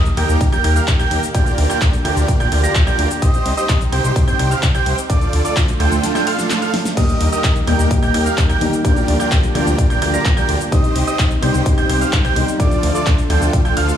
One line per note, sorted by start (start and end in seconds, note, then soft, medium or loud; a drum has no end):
0.00 3.18 A#3 medium
0.00 1.33 D#4 medium
0.00 5.06 G4 medium
0.06 closed hi-hat soft
0.06 cabasa soft
0.17 0.25 D#2 medium
0.17 0.50 G4 medium
0.17 0.50 A#4 medium
0.17 0.50 G5 medium
0.17 0.50 G6 medium
0.17 open hi-hat medium
0.17 ride medium
0.29 0.37 D#2 medium
0.29 closed hi-hat soft
0.29 cabasa medium
0.41 0.48 D#2 loud
0.41 kick loud
0.41 closed hi-hat medium
0.41 ride medium
0.41 cabasa medium
0.52 0.60 D#1 loud
0.52 0.62 G4 medium
0.52 0.62 A#4 medium
0.52 0.62 G5 loud
0.52 0.62 G6 loud
0.52 closed hi-hat soft
0.52 cabasa soft
0.64 0.79 D#2 medium
0.64 0.74 G4 medium
0.64 0.74 A#4 medium
0.64 0.74 G5 medium
0.64 0.74 G6 medium
0.64 open hi-hat loud
0.64 ride medium
0.76 0.89 G4 medium
0.76 0.90 A#4 medium
0.76 0.89 F5 medium
0.76 0.89 F6 medium
0.76 closed hi-hat soft
0.76 cabasa medium
0.88 1.03 D#2 medium
0.88 kick loud
0.88 clap loud
0.88 closed hi-hat medium
0.88 ride medium
0.88 cabasa medium
0.99 1.21 G4 loud
0.99 1.21 A#4 medium
0.99 1.21 G5 loud
0.99 1.21 G6 loud
0.99 closed hi-hat soft
0.99 cabasa soft
1.11 1.19 D#2 medium
1.11 open hi-hat medium
1.11 ride medium
1.23 closed hi-hat soft
1.23 cabasa medium
1.34 1.50 D2 loud
1.34 3.20 D4 medium
1.34 1.67 F4 medium
1.34 1.67 G4 medium
1.34 1.67 A#4 medium
1.34 1.67 D5 medium
1.34 1.67 G5 medium
1.34 1.67 G6 medium
1.34 kick loud
1.34 closed hi-hat medium
1.34 ride medium
1.34 cabasa medium
1.46 closed hi-hat soft
1.46 cabasa soft
1.58 1.66 D2 loud
1.58 open hi-hat loud
1.58 ride medium
1.70 1.91 F4 medium
1.70 1.91 G4 medium
1.70 1.91 A#4 medium
1.70 1.91 D5 medium
1.70 1.91 G5 medium
1.70 1.91 G6 medium
1.70 closed hi-hat soft
1.70 cabasa medium
1.81 1.97 D2 medium
1.81 kick loud
1.81 clap loud
1.81 closed hi-hat medium
1.81 ride medium
1.81 cabasa medium
1.93 closed hi-hat soft
1.93 cabasa soft
2.05 2.12 D2 loud
2.05 2.37 F4 medium
2.05 2.37 G4 medium
2.05 2.37 A#4 medium
2.05 2.37 D5 medium
2.05 2.37 G5 medium
2.05 2.37 G6 medium
2.05 open hi-hat medium
2.05 ride medium
2.16 2.24 D2 medium
2.16 closed hi-hat soft
2.16 cabasa medium
2.28 2.36 D2 loud
2.28 kick loud
2.28 closed hi-hat loud
2.28 ride medium
2.28 cabasa medium
2.40 2.48 D1 loud
2.40 2.49 F4 medium
2.40 2.49 G4 medium
2.40 2.49 A#4 medium
2.40 2.49 D5 medium
2.40 2.49 G5 loud
2.40 2.49 G6 medium
2.40 closed hi-hat soft
2.40 cabasa soft
2.52 2.67 D2 medium
2.52 2.62 F4 medium
2.52 2.62 G4 medium
2.52 2.62 A#4 medium
2.52 2.62 D5 medium
2.52 2.62 G5 medium
2.52 2.62 G6 medium
2.52 open hi-hat loud
2.52 ride medium
2.64 2.77 F4 medium
2.64 2.77 G4 medium
2.64 2.77 A#4 medium
2.64 2.77 D5 medium
2.64 2.77 A#5 medium
2.64 2.77 A#6 medium
2.64 closed hi-hat soft
2.64 cabasa medium
2.75 2.90 D2 medium
2.75 kick loud
2.75 clap loud
2.75 closed hi-hat medium
2.75 ride medium
2.75 cabasa medium
2.87 3.09 F4 medium
2.87 3.08 G4 medium
2.87 3.08 A#4 medium
2.87 3.08 D5 medium
2.87 3.08 G5 loud
2.87 3.08 G6 loud
2.87 closed hi-hat soft
2.87 cabasa soft
2.99 3.06 D2 medium
2.99 open hi-hat medium
2.99 ride medium
3.10 closed hi-hat soft
3.10 cabasa medium
3.22 3.37 C2 loud
3.22 5.08 C4 medium
3.22 5.08 D#4 medium
3.22 3.55 G4 medium
3.22 3.55 C5 medium
3.22 3.55 D#5 medium
3.22 3.55 D#6 medium
3.22 kick loud
3.22 closed hi-hat medium
3.22 ride medium
3.22 cabasa medium
3.34 closed hi-hat soft
3.34 cabasa soft
3.46 3.53 C2 loud
3.46 open hi-hat loud
3.46 ride medium
3.57 3.79 G4 medium
3.57 3.79 C5 medium
3.57 3.79 D#5 medium
3.57 3.79 D#6 medium
3.57 closed hi-hat soft
3.57 cabasa medium
3.69 3.84 C2 medium
3.69 kick loud
3.69 clap loud
3.69 closed hi-hat loud
3.69 ride medium
3.69 cabasa medium
3.81 closed hi-hat soft
3.81 cabasa soft
3.92 4.00 C2 medium
3.92 4.25 G4 medium
3.92 4.25 C5 medium
3.92 4.25 G5 medium
3.92 4.25 G6 medium
3.92 open hi-hat medium
3.92 ride medium
4.04 4.12 C2 medium
4.04 closed hi-hat soft
4.04 cabasa medium
4.16 4.23 C2 loud
4.16 kick loud
4.16 closed hi-hat loud
4.16 ride medium
4.16 cabasa medium
4.28 4.35 G1 loud
4.28 4.37 G4 medium
4.28 4.37 C5 medium
4.28 4.37 G5 medium
4.28 4.37 G6 medium
4.28 closed hi-hat soft
4.28 cabasa soft
4.39 4.54 C2 loud
4.39 4.49 G4 medium
4.39 4.49 C5 medium
4.39 4.49 G5 medium
4.39 4.49 G6 medium
4.39 open hi-hat loud
4.39 ride medium
4.51 4.65 G4 medium
4.51 4.65 C5 medium
4.51 4.65 F5 medium
4.51 4.64 F6 medium
4.51 closed hi-hat soft
4.51 cabasa medium
4.63 4.78 C2 medium
4.63 kick loud
4.63 clap loud
4.63 closed hi-hat loud
4.63 ride medium
4.63 cabasa medium
4.74 4.96 G4 medium
4.74 4.96 C5 medium
4.74 4.96 G5 loud
4.74 4.96 G6 loud
4.74 closed hi-hat soft
4.74 cabasa soft
4.86 4.94 C2 medium
4.86 open hi-hat medium
4.86 ride medium
4.98 closed hi-hat soft
4.98 cabasa medium
5.10 5.25 D2 loud
5.10 6.95 A3 medium
5.10 6.95 D4 medium
5.10 6.95 F4 medium
5.10 5.42 F4 medium
5.10 5.42 A4 medium
5.10 5.42 D5 medium
5.10 5.42 D6 medium
5.10 kick loud
5.10 closed hi-hat loud
5.10 ride medium
5.10 cabasa medium
5.21 closed hi-hat soft
5.21 cabasa soft
5.33 5.41 D2 loud
5.33 open hi-hat loud
5.33 ride medium
5.45 5.66 F4 medium
5.45 5.66 A4 medium
5.45 5.66 D5 medium
5.45 5.66 D6 medium
5.45 closed hi-hat soft
5.45 cabasa medium
5.56 5.72 D2 medium
5.56 kick loud
5.56 clap loud
5.56 closed hi-hat medium
5.56 ride medium
5.56 cabasa medium
5.68 closed hi-hat soft
5.68 cabasa soft
5.80 5.87 D2 loud
5.80 6.12 F4 medium
5.80 6.12 A4 medium
5.80 6.12 G5 medium
5.80 6.12 G6 medium
5.80 open hi-hat medium
5.80 ride medium
5.92 5.99 D2 medium
5.92 closed hi-hat soft
5.92 cabasa medium
6.03 snare medium
6.03 closed hi-hat loud
6.03 ride medium
6.03 cabasa medium
6.15 6.25 F4 medium
6.15 6.25 A4 medium
6.15 6.25 G5 medium
6.15 6.24 G6 medium
6.15 snare medium
6.15 closed hi-hat soft
6.15 cabasa soft
6.27 6.59 F4 loud
6.27 6.59 A4 medium
6.27 6.59 F5 loud
6.27 6.59 F6 loud
6.27 open hi-hat loud
6.27 ride medium
6.39 snare medium
6.39 closed hi-hat soft
6.39 cabasa medium
6.50 snare medium
6.50 clap loud
6.50 closed hi-hat loud
6.50 ride medium
6.50 cabasa medium
6.62 6.75 F4 medium
6.62 6.75 A4 medium
6.62 6.75 F5 loud
6.62 6.75 F6 medium
6.62 closed hi-hat soft
6.62 cabasa soft
6.74 snare loud
6.74 open hi-hat medium
6.74 ride medium
6.85 snare medium
6.85 closed hi-hat soft
6.85 cabasa medium
6.96 7.12 D#2 loud
6.96 7.64 D#3 medium
6.96 7.64 G3 medium
6.96 8.83 A#3 medium
6.96 7.65 A#3 medium
6.96 8.83 D#4 medium
6.96 7.65 D#4 medium
6.96 12.56 G4 medium
6.96 7.30 G4 medium
6.96 7.30 A#4 medium
6.96 7.30 D#5 medium
6.96 7.29 D#6 medium
6.96 kick loud
6.96 closed hi-hat loud
6.96 crash medium
6.96 ride medium
6.96 cabasa medium
7.09 closed hi-hat soft
7.09 cabasa soft
7.20 7.28 D#2 loud
7.20 open hi-hat loud
7.20 ride medium
7.32 7.54 G4 medium
7.32 7.54 A#4 medium
7.32 7.54 D#5 medium
7.32 7.54 D#6 medium
7.32 closed hi-hat soft
7.32 cabasa medium
7.44 7.59 D#2 medium
7.44 kick loud
7.44 clap loud
7.44 closed hi-hat loud
7.44 ride medium
7.44 cabasa medium
7.56 closed hi-hat soft
7.56 cabasa soft
7.66 7.75 D#2 loud
7.66 8.58 D#3 medium
7.66 8.58 G3 medium
7.66 8.59 A#3 medium
7.66 8.59 D#4 loud
7.66 8.00 G4 medium
7.66 8.00 A#4 medium
7.66 8.00 G5 medium
7.66 8.00 G6 medium
7.66 open hi-hat medium
7.66 ride medium
7.79 7.87 D#2 medium
7.79 closed hi-hat soft
7.79 cabasa medium
7.91 7.98 D#2 loud
7.91 kick loud
7.91 closed hi-hat loud
7.91 ride medium
7.91 cabasa medium
8.03 8.10 D#1 loud
8.03 8.12 G4 medium
8.03 8.12 A#4 medium
8.03 8.12 G5 medium
8.03 8.12 G6 medium
8.03 closed hi-hat soft
8.03 cabasa soft
8.14 8.29 D#2 medium
8.14 8.24 G4 medium
8.14 8.24 A#4 medium
8.14 8.24 G5 medium
8.14 8.24 G6 medium
8.14 open hi-hat loud
8.14 ride medium
8.26 8.40 G4 medium
8.26 8.40 A#4 medium
8.26 8.40 F5 medium
8.26 8.39 F6 medium
8.26 closed hi-hat soft
8.26 cabasa medium
8.38 8.53 D#2 medium
8.38 kick loud
8.38 clap loud
8.38 closed hi-hat loud
8.38 ride medium
8.38 cabasa medium
8.49 8.71 G4 medium
8.49 8.71 A#4 medium
8.49 8.71 G5 loud
8.49 8.71 G6 loud
8.49 closed hi-hat soft
8.49 cabasa soft
8.61 8.69 D#2 medium
8.61 8.82 D#3 medium
8.61 8.82 G3 medium
8.61 8.82 A#3 medium
8.61 8.82 D#4 medium
8.61 open hi-hat loud
8.61 ride medium
8.73 closed hi-hat soft
8.73 cabasa medium
8.84 9.00 D2 loud
8.84 9.52 F3 medium
8.84 9.52 G3 medium
8.84 10.70 A#3 medium
8.84 9.52 A#3 medium
8.84 10.70 D4 medium
8.84 9.53 D4 loud
8.84 9.17 F4 medium
8.84 9.17 G4 medium
8.84 9.17 A#4 medium
8.84 9.17 D5 medium
8.84 9.17 G5 medium
8.84 9.17 G6 medium
8.84 kick loud
8.84 closed hi-hat medium
8.84 ride medium
8.84 cabasa medium
8.96 closed hi-hat soft
8.96 cabasa soft
9.08 9.16 D2 loud
9.08 open hi-hat loud
9.08 ride medium
9.20 9.41 F4 medium
9.20 9.41 G4 medium
9.20 9.41 A#4 medium
9.20 9.41 D5 medium
9.20 9.41 G5 medium
9.20 9.41 G6 medium
9.20 closed hi-hat soft
9.20 cabasa medium
9.32 9.47 D2 medium
9.32 kick loud
9.32 clap loud
9.32 closed hi-hat medium
9.32 ride medium
9.32 cabasa medium
9.43 closed hi-hat soft
9.43 cabasa soft
9.54 9.62 D2 medium
9.54 10.69 F3 medium
9.54 10.69 G3 medium
9.54 10.69 A#3 medium
9.54 10.70 D4 medium
9.54 9.87 F4 medium
9.54 9.87 G4 medium
9.54 9.87 A#4 medium
9.54 9.87 D5 medium
9.54 9.87 G5 medium
9.54 9.87 G6 medium
9.54 open hi-hat loud
9.54 ride medium
9.67 9.74 D2 medium
9.67 closed hi-hat soft
9.67 cabasa medium
9.78 9.86 D2 loud
9.78 kick loud
9.78 closed hi-hat loud
9.78 ride medium
9.78 cabasa medium
9.90 9.98 D1 loud
9.90 10.00 F4 medium
9.90 10.00 G4 medium
9.90 10.00 A#4 medium
9.90 10.00 D5 medium
9.90 10.00 G5 loud
9.90 9.99 G6 medium
9.90 closed hi-hat soft
9.90 cabasa soft
10.02 10.17 D2 medium
10.02 10.12 F4 medium
10.02 10.12 G4 medium
10.02 10.12 A#4 medium
10.02 10.12 D5 medium
10.02 10.12 G5 medium
10.02 10.12 G6 medium
10.02 open hi-hat loud
10.02 ride medium
10.13 10.27 F4 medium
10.13 10.27 G4 medium
10.13 10.27 A#4 medium
10.13 10.27 D5 medium
10.13 10.27 A#5 medium
10.13 10.27 A#6 medium
10.13 closed hi-hat soft
10.13 cabasa medium
10.25 10.40 D2 medium
10.25 kick loud
10.25 clap loud
10.25 closed hi-hat loud
10.25 ride medium
10.25 cabasa medium
10.37 10.59 F4 medium
10.37 10.59 G4 medium
10.37 10.59 A#4 medium
10.37 10.59 D5 medium
10.37 10.59 G5 loud
10.37 10.58 G6 loud
10.37 closed hi-hat soft
10.37 cabasa soft
10.49 10.56 D2 medium
10.49 open hi-hat loud
10.49 ride medium
10.60 closed hi-hat soft
10.60 cabasa medium
10.71 10.87 C2 loud
10.71 11.39 D#3 medium
10.71 11.39 G3 medium
10.71 12.58 C4 medium
10.71 11.40 C4 medium
10.71 12.58 D#4 medium
10.71 11.40 D#4 medium
10.71 11.05 G4 medium
10.71 11.05 C5 medium
10.71 11.05 D#5 medium
10.71 11.05 D#6 medium
10.71 kick loud
10.71 closed hi-hat medium
10.71 ride medium
10.71 cabasa medium
10.84 closed hi-hat soft
10.84 cabasa soft
10.96 11.03 C2 loud
10.96 open hi-hat loud
10.96 ride medium
11.07 11.29 G4 medium
11.07 11.29 C5 medium
11.07 11.29 D#5 medium
11.07 11.29 D#6 medium
11.07 closed hi-hat soft
11.07 cabasa medium
11.19 11.34 C2 medium
11.19 kick loud
11.19 clap loud
11.19 closed hi-hat medium
11.19 ride medium
11.19 cabasa medium
11.31 closed hi-hat soft
11.31 cabasa soft
11.41 11.50 C2 medium
11.41 12.33 D#3 medium
11.41 12.33 G3 medium
11.41 12.34 C4 medium
11.41 12.34 D#4 loud
11.41 11.75 G4 medium
11.41 11.75 C5 medium
11.41 11.75 G5 medium
11.41 11.75 G6 medium
11.41 open hi-hat loud
11.41 ride medium
11.54 11.62 C2 medium
11.54 closed hi-hat soft
11.54 cabasa medium
11.66 11.73 C2 loud
11.66 kick loud
11.66 closed hi-hat medium
11.66 ride medium
11.66 cabasa medium
11.78 11.85 G1 loud
11.78 11.87 G4 medium
11.78 11.87 C5 medium
11.78 11.87 G5 loud
11.78 11.87 G6 loud
11.78 closed hi-hat soft
11.78 cabasa soft
11.89 12.04 C2 loud
11.89 11.99 G4 medium
11.89 11.99 C5 medium
11.89 11.99 G5 medium
11.89 11.99 G6 medium
11.89 open hi-hat loud
11.89 ride medium
12.01 12.14 G4 medium
12.01 12.14 C5 medium
12.01 12.14 F5 medium
12.01 12.14 F6 medium
12.01 closed hi-hat soft
12.01 cabasa medium
12.13 12.28 C2 medium
12.13 kick loud
12.13 clap loud
12.13 closed hi-hat loud
12.13 ride medium
12.13 cabasa medium
12.24 12.46 G4 medium
12.24 12.46 C5 medium
12.24 12.46 G5 loud
12.24 12.46 G6 loud
12.24 closed hi-hat soft
12.24 cabasa soft
12.36 12.44 C2 medium
12.36 12.57 D#3 medium
12.36 12.57 G3 medium
12.36 12.57 C4 medium
12.36 12.57 D#4 medium
12.36 open hi-hat loud
12.36 ride medium
12.48 closed hi-hat soft
12.48 cabasa medium
12.59 12.75 D2 loud
12.59 13.27 D3 loud
12.59 13.27 F3 medium
12.59 13.97 A3 medium
12.59 13.27 A3 medium
12.59 13.97 D4 medium
12.59 13.28 D4 loud
12.59 12.92 F4 medium
12.59 13.97 F4 medium
12.59 12.92 A4 medium
12.59 12.92 D5 medium
12.59 12.92 D6 medium
12.59 kick loud
12.59 closed hi-hat medium
12.59 ride medium
12.59 cabasa medium
12.71 closed hi-hat soft
12.71 cabasa soft
12.83 12.91 D2 loud
12.83 open hi-hat loud
12.83 ride medium
12.95 13.16 F4 medium
12.95 13.16 A4 medium
12.95 13.16 D5 medium
12.95 13.16 D6 medium
12.95 closed hi-hat soft
12.95 cabasa medium
13.06 13.22 D2 medium
13.06 kick loud
13.06 clap loud
13.06 closed hi-hat medium
13.06 ride medium
13.06 cabasa medium
13.18 closed hi-hat soft
13.18 cabasa soft
13.29 13.37 D2 loud
13.29 13.97 D3 medium
13.29 13.97 F3 medium
13.29 13.97 A3 medium
13.29 13.97 D4 medium
13.29 13.62 F4 medium
13.29 13.62 A4 medium
13.29 13.62 G5 medium
13.29 13.62 G6 medium
13.29 open hi-hat medium
13.29 ride medium
13.41 13.49 D2 medium
13.41 closed hi-hat soft
13.41 cabasa medium
13.53 13.61 D2 loud
13.53 kick loud
13.53 closed hi-hat medium
13.53 ride medium
13.53 cabasa medium
13.65 13.73 D1 loud
13.65 13.74 F4 medium
13.65 13.74 A4 medium
13.65 13.74 G5 medium
13.65 13.74 G6 medium
13.65 closed hi-hat soft
13.65 cabasa soft
13.77 13.92 D2 loud
13.77 13.97 F4 loud
13.77 13.97 A4 medium
13.77 13.97 F5 loud
13.77 13.97 F6 loud
13.77 open hi-hat loud
13.77 ride medium
13.89 closed hi-hat soft
13.89 cabasa medium